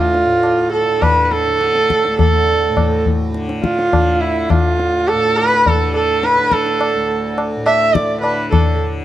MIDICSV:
0, 0, Header, 1, 4, 480
1, 0, Start_track
1, 0, Tempo, 576923
1, 1819, Time_signature, 4, 2, 24, 8
1, 7529, End_track
2, 0, Start_track
2, 0, Title_t, "Sarangi"
2, 0, Program_c, 0, 110
2, 0, Note_on_c, 0, 65, 83
2, 591, Note_off_c, 0, 65, 0
2, 596, Note_on_c, 0, 69, 82
2, 846, Note_on_c, 0, 71, 82
2, 859, Note_off_c, 0, 69, 0
2, 1036, Note_off_c, 0, 71, 0
2, 1036, Note_on_c, 0, 71, 56
2, 1088, Note_on_c, 0, 69, 89
2, 1101, Note_off_c, 0, 71, 0
2, 1816, Note_off_c, 0, 69, 0
2, 1827, Note_on_c, 0, 69, 86
2, 2513, Note_off_c, 0, 69, 0
2, 3020, Note_on_c, 0, 65, 79
2, 3498, Note_on_c, 0, 64, 72
2, 3510, Note_off_c, 0, 65, 0
2, 3745, Note_on_c, 0, 65, 80
2, 3757, Note_off_c, 0, 64, 0
2, 4224, Note_on_c, 0, 69, 94
2, 4236, Note_off_c, 0, 65, 0
2, 4461, Note_on_c, 0, 71, 99
2, 4474, Note_off_c, 0, 69, 0
2, 4715, Note_on_c, 0, 69, 83
2, 4727, Note_off_c, 0, 71, 0
2, 4942, Note_off_c, 0, 69, 0
2, 4947, Note_on_c, 0, 69, 81
2, 5196, Note_on_c, 0, 71, 93
2, 5209, Note_off_c, 0, 69, 0
2, 5427, Note_on_c, 0, 69, 82
2, 5440, Note_off_c, 0, 71, 0
2, 6141, Note_off_c, 0, 69, 0
2, 6376, Note_on_c, 0, 76, 103
2, 6599, Note_on_c, 0, 74, 87
2, 6612, Note_off_c, 0, 76, 0
2, 6825, Note_off_c, 0, 74, 0
2, 6830, Note_on_c, 0, 71, 72
2, 7062, Note_off_c, 0, 71, 0
2, 7076, Note_on_c, 0, 69, 68
2, 7304, Note_off_c, 0, 69, 0
2, 7529, End_track
3, 0, Start_track
3, 0, Title_t, "Tanpura"
3, 0, Program_c, 1, 104
3, 0, Note_on_c, 1, 38, 56
3, 0, Note_on_c, 1, 45, 57
3, 0, Note_on_c, 1, 50, 55
3, 202, Note_off_c, 1, 45, 0
3, 205, Note_on_c, 1, 45, 55
3, 717, Note_off_c, 1, 50, 0
3, 717, Note_on_c, 1, 50, 55
3, 1220, Note_off_c, 1, 50, 0
3, 1220, Note_on_c, 1, 50, 52
3, 1717, Note_off_c, 1, 38, 0
3, 1720, Note_on_c, 1, 38, 55
3, 2232, Note_off_c, 1, 45, 0
3, 2235, Note_on_c, 1, 45, 56
3, 2744, Note_off_c, 1, 50, 0
3, 2744, Note_on_c, 1, 50, 54
3, 3244, Note_off_c, 1, 50, 0
3, 3244, Note_on_c, 1, 50, 58
3, 3760, Note_off_c, 1, 38, 0
3, 3763, Note_on_c, 1, 38, 53
3, 4260, Note_off_c, 1, 45, 0
3, 4263, Note_on_c, 1, 45, 51
3, 4766, Note_off_c, 1, 50, 0
3, 4766, Note_on_c, 1, 50, 54
3, 5278, Note_off_c, 1, 50, 0
3, 5278, Note_on_c, 1, 50, 52
3, 5779, Note_off_c, 1, 38, 0
3, 5782, Note_on_c, 1, 38, 60
3, 6284, Note_off_c, 1, 45, 0
3, 6287, Note_on_c, 1, 45, 54
3, 6791, Note_off_c, 1, 50, 0
3, 6791, Note_on_c, 1, 50, 52
3, 7284, Note_off_c, 1, 50, 0
3, 7284, Note_on_c, 1, 50, 50
3, 7529, Note_off_c, 1, 38, 0
3, 7529, Note_off_c, 1, 45, 0
3, 7529, Note_off_c, 1, 50, 0
3, 7529, End_track
4, 0, Start_track
4, 0, Title_t, "Tabla"
4, 119, Note_on_c, 9, 62, 54
4, 202, Note_off_c, 9, 62, 0
4, 361, Note_on_c, 9, 60, 66
4, 444, Note_off_c, 9, 60, 0
4, 849, Note_on_c, 9, 60, 67
4, 849, Note_on_c, 9, 64, 61
4, 933, Note_off_c, 9, 60, 0
4, 933, Note_off_c, 9, 64, 0
4, 1095, Note_on_c, 9, 62, 53
4, 1178, Note_off_c, 9, 62, 0
4, 1338, Note_on_c, 9, 62, 67
4, 1421, Note_off_c, 9, 62, 0
4, 1459, Note_on_c, 9, 62, 54
4, 1543, Note_off_c, 9, 62, 0
4, 1582, Note_on_c, 9, 37, 58
4, 1665, Note_off_c, 9, 37, 0
4, 1704, Note_on_c, 9, 62, 51
4, 1787, Note_off_c, 9, 62, 0
4, 1823, Note_on_c, 9, 63, 93
4, 1823, Note_on_c, 9, 64, 80
4, 1906, Note_off_c, 9, 63, 0
4, 1906, Note_off_c, 9, 64, 0
4, 2303, Note_on_c, 9, 60, 70
4, 2303, Note_on_c, 9, 64, 60
4, 2386, Note_off_c, 9, 60, 0
4, 2386, Note_off_c, 9, 64, 0
4, 2545, Note_on_c, 9, 64, 53
4, 2628, Note_off_c, 9, 64, 0
4, 2782, Note_on_c, 9, 62, 66
4, 2865, Note_off_c, 9, 62, 0
4, 2905, Note_on_c, 9, 62, 57
4, 2988, Note_off_c, 9, 62, 0
4, 3026, Note_on_c, 9, 37, 51
4, 3109, Note_off_c, 9, 37, 0
4, 3152, Note_on_c, 9, 62, 56
4, 3235, Note_off_c, 9, 62, 0
4, 3271, Note_on_c, 9, 60, 69
4, 3271, Note_on_c, 9, 64, 63
4, 3354, Note_off_c, 9, 60, 0
4, 3354, Note_off_c, 9, 64, 0
4, 3745, Note_on_c, 9, 60, 70
4, 3745, Note_on_c, 9, 64, 62
4, 3828, Note_off_c, 9, 60, 0
4, 3828, Note_off_c, 9, 64, 0
4, 3989, Note_on_c, 9, 62, 57
4, 4072, Note_off_c, 9, 62, 0
4, 4225, Note_on_c, 9, 60, 68
4, 4309, Note_off_c, 9, 60, 0
4, 4471, Note_on_c, 9, 60, 59
4, 4554, Note_off_c, 9, 60, 0
4, 4711, Note_on_c, 9, 63, 73
4, 4711, Note_on_c, 9, 64, 60
4, 4794, Note_off_c, 9, 63, 0
4, 4794, Note_off_c, 9, 64, 0
4, 4942, Note_on_c, 9, 60, 51
4, 5026, Note_off_c, 9, 60, 0
4, 5186, Note_on_c, 9, 62, 67
4, 5269, Note_off_c, 9, 62, 0
4, 5308, Note_on_c, 9, 62, 58
4, 5391, Note_off_c, 9, 62, 0
4, 5421, Note_on_c, 9, 37, 57
4, 5504, Note_off_c, 9, 37, 0
4, 5542, Note_on_c, 9, 62, 55
4, 5625, Note_off_c, 9, 62, 0
4, 5663, Note_on_c, 9, 60, 69
4, 5746, Note_off_c, 9, 60, 0
4, 6139, Note_on_c, 9, 60, 65
4, 6223, Note_off_c, 9, 60, 0
4, 6376, Note_on_c, 9, 60, 75
4, 6459, Note_off_c, 9, 60, 0
4, 6615, Note_on_c, 9, 37, 72
4, 6698, Note_off_c, 9, 37, 0
4, 6852, Note_on_c, 9, 60, 65
4, 6935, Note_off_c, 9, 60, 0
4, 7093, Note_on_c, 9, 60, 83
4, 7093, Note_on_c, 9, 64, 78
4, 7177, Note_off_c, 9, 60, 0
4, 7177, Note_off_c, 9, 64, 0
4, 7529, End_track
0, 0, End_of_file